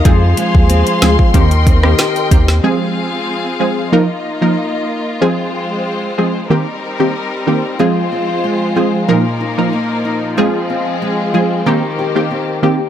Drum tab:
HH |x-x-xxx-xxx-xxx-|----------------|----------------|----------------|
SD |------o----ro--o|----------------|----------------|----------------|
BD |o--o---oo-o---o-|----------------|----------------|----------------|

HH |----------------|
SD |----------------|
BD |----------------|